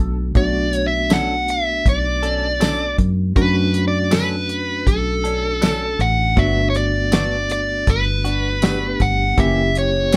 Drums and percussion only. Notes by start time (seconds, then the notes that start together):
0.35 kick, closed hi-hat
0.73 closed hi-hat
1.10 snare, closed hi-hat, tambourine
1.48 closed hi-hat
1.86 kick, closed hi-hat
2.23 closed hi-hat
2.61 snare, closed hi-hat, tambourine
2.98 kick, closed hi-hat
3.36 kick, closed hi-hat
3.74 closed hi-hat
4.11 snare, closed hi-hat, tambourine
4.49 closed hi-hat
4.87 kick, closed hi-hat
5.25 closed hi-hat
5.62 snare, closed hi-hat, tambourine
6.00 closed hi-hat
6.37 kick, closed hi-hat
6.75 closed hi-hat
7.12 snare, closed hi-hat, tambourine
7.50 closed hi-hat
7.87 kick, closed hi-hat
8.25 closed hi-hat
8.62 snare, closed hi-hat, tambourine
9.00 kick, closed hi-hat
9.38 kick, closed hi-hat
9.75 closed hi-hat
10.12 closed hi-hat, tambourine